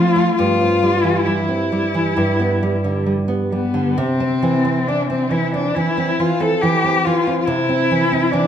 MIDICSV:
0, 0, Header, 1, 3, 480
1, 0, Start_track
1, 0, Key_signature, 0, "major"
1, 0, Tempo, 895522
1, 195, Time_signature, 4, 2, 24, 8
1, 3078, Tempo, 857143
1, 4606, End_track
2, 0, Start_track
2, 0, Title_t, "Cello"
2, 0, Program_c, 0, 42
2, 0, Note_on_c, 0, 65, 90
2, 186, Note_off_c, 0, 65, 0
2, 189, Note_on_c, 0, 65, 90
2, 673, Note_on_c, 0, 64, 70
2, 681, Note_off_c, 0, 65, 0
2, 1641, Note_off_c, 0, 64, 0
2, 1885, Note_on_c, 0, 59, 68
2, 2130, Note_on_c, 0, 60, 83
2, 2138, Note_off_c, 0, 59, 0
2, 2611, Note_on_c, 0, 62, 83
2, 2619, Note_off_c, 0, 60, 0
2, 2727, Note_off_c, 0, 62, 0
2, 2733, Note_on_c, 0, 60, 63
2, 2852, Note_on_c, 0, 64, 69
2, 2860, Note_off_c, 0, 60, 0
2, 2966, Note_off_c, 0, 64, 0
2, 2974, Note_on_c, 0, 62, 67
2, 3083, Note_on_c, 0, 64, 77
2, 3092, Note_off_c, 0, 62, 0
2, 3333, Note_on_c, 0, 65, 72
2, 3342, Note_off_c, 0, 64, 0
2, 3449, Note_on_c, 0, 69, 75
2, 3458, Note_off_c, 0, 65, 0
2, 3564, Note_on_c, 0, 67, 80
2, 3573, Note_off_c, 0, 69, 0
2, 3811, Note_on_c, 0, 65, 75
2, 3819, Note_off_c, 0, 67, 0
2, 4006, Note_off_c, 0, 65, 0
2, 4009, Note_on_c, 0, 65, 57
2, 4039, Note_on_c, 0, 64, 87
2, 4047, Note_off_c, 0, 65, 0
2, 4521, Note_on_c, 0, 62, 80
2, 4529, Note_off_c, 0, 64, 0
2, 4606, Note_off_c, 0, 62, 0
2, 4606, End_track
3, 0, Start_track
3, 0, Title_t, "Nylon-string guitar"
3, 0, Program_c, 1, 24
3, 0, Note_on_c, 1, 53, 57
3, 85, Note_on_c, 1, 57, 56
3, 151, Note_off_c, 1, 53, 0
3, 199, Note_off_c, 1, 57, 0
3, 207, Note_on_c, 1, 43, 70
3, 327, Note_on_c, 1, 60, 49
3, 443, Note_on_c, 1, 55, 53
3, 510, Note_off_c, 1, 60, 0
3, 557, Note_on_c, 1, 52, 46
3, 629, Note_off_c, 1, 55, 0
3, 679, Note_on_c, 1, 55, 49
3, 746, Note_off_c, 1, 52, 0
3, 796, Note_on_c, 1, 60, 47
3, 869, Note_off_c, 1, 55, 0
3, 923, Note_on_c, 1, 55, 51
3, 989, Note_off_c, 1, 60, 0
3, 1042, Note_on_c, 1, 52, 48
3, 1115, Note_off_c, 1, 55, 0
3, 1144, Note_off_c, 1, 43, 0
3, 1161, Note_on_c, 1, 43, 59
3, 1162, Note_off_c, 1, 52, 0
3, 1284, Note_on_c, 1, 59, 48
3, 1408, Note_on_c, 1, 55, 50
3, 1475, Note_off_c, 1, 59, 0
3, 1524, Note_on_c, 1, 50, 46
3, 1596, Note_off_c, 1, 55, 0
3, 1642, Note_on_c, 1, 55, 48
3, 1713, Note_off_c, 1, 50, 0
3, 1758, Note_on_c, 1, 59, 46
3, 1832, Note_off_c, 1, 55, 0
3, 1888, Note_on_c, 1, 55, 46
3, 1953, Note_off_c, 1, 59, 0
3, 2004, Note_on_c, 1, 50, 47
3, 2079, Note_off_c, 1, 55, 0
3, 2103, Note_off_c, 1, 43, 0
3, 2125, Note_off_c, 1, 50, 0
3, 2132, Note_on_c, 1, 48, 71
3, 2252, Note_on_c, 1, 60, 54
3, 2372, Note_on_c, 1, 52, 53
3, 2442, Note_off_c, 1, 60, 0
3, 2491, Note_on_c, 1, 60, 51
3, 2561, Note_off_c, 1, 52, 0
3, 2619, Note_on_c, 1, 52, 50
3, 2679, Note_off_c, 1, 60, 0
3, 2732, Note_on_c, 1, 60, 50
3, 2802, Note_off_c, 1, 52, 0
3, 2845, Note_on_c, 1, 52, 53
3, 2918, Note_off_c, 1, 60, 0
3, 2969, Note_on_c, 1, 60, 50
3, 3033, Note_off_c, 1, 52, 0
3, 3061, Note_off_c, 1, 48, 0
3, 3090, Note_on_c, 1, 52, 50
3, 3157, Note_off_c, 1, 60, 0
3, 3208, Note_on_c, 1, 60, 50
3, 3280, Note_off_c, 1, 52, 0
3, 3332, Note_on_c, 1, 52, 51
3, 3400, Note_off_c, 1, 60, 0
3, 3447, Note_on_c, 1, 60, 50
3, 3522, Note_off_c, 1, 52, 0
3, 3575, Note_on_c, 1, 52, 52
3, 3639, Note_off_c, 1, 60, 0
3, 3694, Note_on_c, 1, 60, 52
3, 3762, Note_off_c, 1, 52, 0
3, 3819, Note_on_c, 1, 52, 53
3, 3881, Note_off_c, 1, 60, 0
3, 3934, Note_on_c, 1, 60, 49
3, 4003, Note_off_c, 1, 52, 0
3, 4047, Note_on_c, 1, 48, 66
3, 4049, Note_off_c, 1, 60, 0
3, 4169, Note_on_c, 1, 60, 48
3, 4292, Note_on_c, 1, 52, 51
3, 4357, Note_off_c, 1, 60, 0
3, 4411, Note_on_c, 1, 60, 51
3, 4477, Note_off_c, 1, 52, 0
3, 4527, Note_on_c, 1, 52, 53
3, 4596, Note_off_c, 1, 60, 0
3, 4606, Note_off_c, 1, 48, 0
3, 4606, Note_off_c, 1, 52, 0
3, 4606, End_track
0, 0, End_of_file